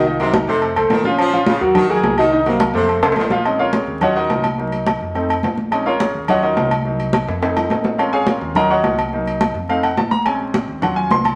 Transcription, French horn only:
X:1
M:4/4
L:1/8
Q:1/4=212
K:Bbm
V:1 name="French horn"
F E4 z2 D- | D2 F G2 A2 G | E B,3 z4 | z8 |
z8 | z8 | z8 | z8 |
z8 | z8 |]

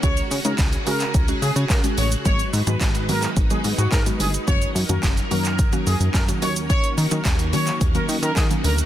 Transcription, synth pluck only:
X:1
M:4/4
L:1/16
Q:1/4=108
K:F#
V:1 name="Synth pluck"
[G,CF]2 z [G,CD]2 z [G,CF]2 z [G,CF]3 z [G,CF]2 z | [D,F,G,B,F]2 z [D,F,G,B,F]2 z [D,F,G,B,F]2 z [D,F,G,B,F]3 z [D,F,G,B,F]2 z | [D,F,A,CF]2 z [D,F,A,CF]2 z [D,F,A,CF]2 z [D,F,A,CF]3 z [D,F,A,CF] [D,F,A,CF]2- | [D,F,A,CF]2 z [D,F,A,CF]2 z [D,F,A,CF]2 z [D,F,A,CF]3 z [D,F,A,CD]2 z |]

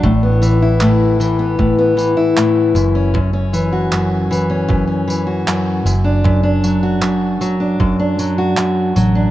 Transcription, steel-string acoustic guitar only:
X:1
M:4/4
L:1/16
Q:1/4=77
K:Dlyd
V:1 name="Steel-string acoustic guitar" clef=bass
A,, B, E, E A,,2 E, B, A,, B, E, E A,,2 F,, C | F,, C E, F F,,2 E, C F,, C E, F F,,2 F,, D | F,, D F, F F,,2 F, D F,, D F, F F,,2 F, D |]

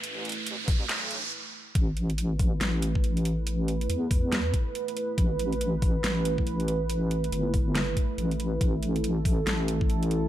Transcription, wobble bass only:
X:1
M:4/4
L:1/8
Q:"Swing 16ths" 1/4=140
K:C
V:1 name="Wobble bass" clef=bass
A,,,2 A,,,2 B,,,2 z2 | A,,,4 A,,,4- | A,,,2 E,,3 z3 | A,,,4 A,,,4- |
A,,,2 G,,,3 z A,,,2 | A,,,4 A,,,4 |]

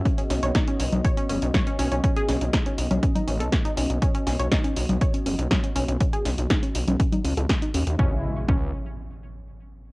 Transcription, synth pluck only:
X:1
M:4/4
L:1/16
Q:1/4=121
K:Bmix
V:1 name="Synth pluck"
C C C c D C z2 c C C z c C C C | C G C z D C z C C D C A z D C z | C C C c D C z2 c C C z c C C C | C G C z D C z C C D C A z D C z |
C z3 C2 z8 z2 |]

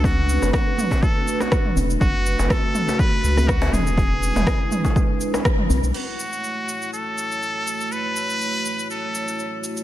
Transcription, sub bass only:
X:1
M:4/4
L:1/16
Q:"Swing 16ths" 1/4=122
K:F#m
V:1 name="Sub bass" clef=bass
C,,3 F,,, z8 z2 E,,,2 | F,,,3 F,,, z6 C,,4 E,,,2- | E,,,3 E,,, z8 z2 B,,, B,,, | z16 |
z16 |]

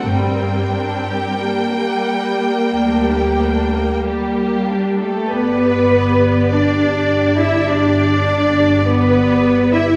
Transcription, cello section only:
X:1
M:4/4
L:1/16
Q:1/4=49
K:Gm
V:1 name="Cello section"
G,,4 z4 D,,4 G,3 A, | [K:G] B,4 D3 E D4 B,3 E |]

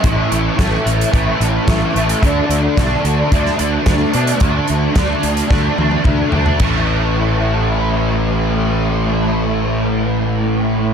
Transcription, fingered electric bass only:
X:1
M:4/4
L:1/8
Q:1/4=109
K:D
V:1 name="Fingered electric bass" clef=bass
A,,, A,,, A,,, A,,, A,,, A,,, A,,, A,,, | D,, D,, B,,, D,, D,, D,, D,, B,, | D,, D,, D,, D,, D,, D,, D,, D,, | A,,,8- |
A,,,8 |]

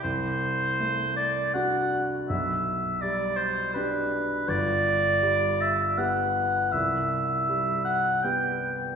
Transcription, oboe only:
X:1
M:3/4
L:1/8
Q:1/4=80
K:G
V:1 name="Oboe"
c3 d f z | e2 d c B2 | d3 e f2 | e3 f g z |]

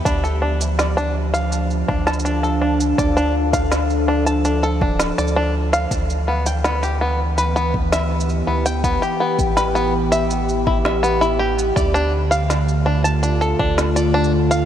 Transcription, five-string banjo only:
X:1
M:4/4
L:1/16
Q:1/4=82
K:Ddor
V:1 name="Five-string banjo"
D A D z d D z f3 D a D A D z | d D z f3 D a D A D z d D z f | z2 B, g B, G B, z B B, z e3 B, g | B, G B, z B B, z e3 E e B, E G z |
d D z f3 D a D A D z d D z f |]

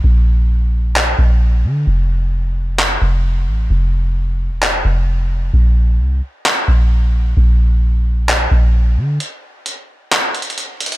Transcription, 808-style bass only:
X:1
M:4/4
L:1/16
Q:1/4=131
K:Bblyd
V:1 name="808-style bass" clef=bass
B,,,8- B,,,2 B,,,4 D,2 | F,,,8- F,,,2 F,,,4 A,,,2 | F,,,6- F,,, E,,,3 F,,,6 | B,,,4 C,,2 z4 B,,,6 |
B,,,8- B,,,2 B,,,4 D,2 | z16 |]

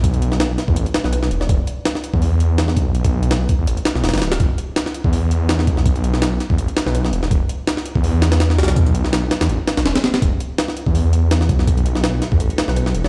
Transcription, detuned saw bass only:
X:1
M:4/4
L:1/16
Q:"Swing 16ths" 1/4=165
K:Em
V:1 name="Detuned saw bass" clef=bass
B,,,6 z E,, A,,, z2 B,,,3 E,,,2 | E,,, z6 E,,6- E,, B,,,2- | B,,,6 z E,, A,,, z2 B,,, E,,, G,,, D,,,2 | E,,, z6 E,,6- E,, B,,,2- |
B,,,6 z E,, A,,, z2 B,,,3 E,,,2 | E,,, z6 E,,6- E,, B,,,2- | B,,,6 z E,, A,,, z2 B,,, E,,, z3 | E,,, z6 E,,6- E,, B,,,2- |
B,,,6 z E,, A,,, z2 B,,,3 E,,,2 |]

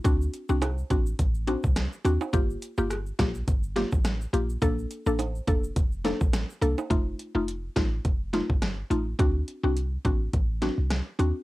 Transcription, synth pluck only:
X:1
M:4/4
L:1/16
Q:"Swing 16ths" 1/4=105
K:Fmix
V:1 name="Synth pluck"
[CD^F]3 [CDF] z2 [CDF] z3 [CDF] z3 [CDF] z | [B,FG]3 [B,FG] z2 [B,FG] z3 [B,FG] z3 [B,FG] z | [B,DA]3 [B,DA] z2 [B,DA] z3 [B,DA] z3 [B,DA] z | [A,EF]3 [A,EF] z2 [A,EF] z3 [A,EF] z3 [A,EF] z |
[CD^F]3 [CDF] z2 [CDF] z3 [CDF] z3 [CDF] z |]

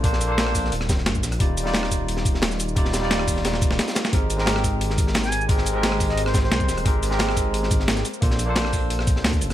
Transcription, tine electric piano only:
X:1
M:4/4
L:1/16
Q:1/4=176
K:Ablyd
V:1 name="Tine electric piano"
[B,D=Ac]3 [B,DAc]4- [B,DAc] z8 | [G,EFd]3 [G,EFd]8 z4 z | [G,EFd]3 [G,EFd]8 z4 z | [A,CGB]3 [A,CGB]8 z4 z |
[A,CGB]3 [A,CGB]8 z4 z | [A,CGB]3 [A,CGB]8 z4 z | [B,D=Ac]3 [B,DAc]8 z4 z |]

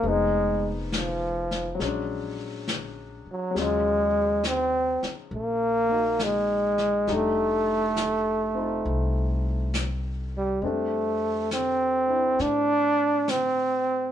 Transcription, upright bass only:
X:1
M:4/4
L:1/8
Q:"Swing" 1/4=68
K:Fmix
V:1 name="Upright bass" clef=bass
F,,,4 B,,,3 z | E,,3 z B,,,4 | F,,,4 C,,4 | [K:F] F,,4 A,,4 |]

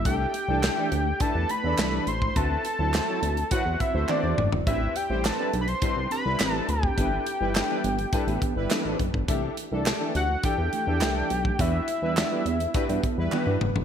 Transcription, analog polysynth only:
X:1
M:4/4
L:1/16
Q:1/4=104
K:Clyd
V:1 name="Analog polysynth"
z3 [E,DA] z [E,DA] z2 [E,DA] z2 [E,DA]3 z2 | z3 [F,EA] z [F,EA] z2 [F,EB] z2 [A,Fc]3 z2 | z3 [G,Ec] z [G,EB] z2 [G,Ec] z2 [G,EB]3 z2 | z3 [G,EB] z [G,EB] z2 [G,EB] z2 [G,EB]3 z2 |
z3 [E,DA] z [E,DA] z2 [E,DA] z2 [E,DA]3 z2 | z3 [G,EB] z [G,EB] z2 [G,EB] z2 [G,EB]3 z2 |]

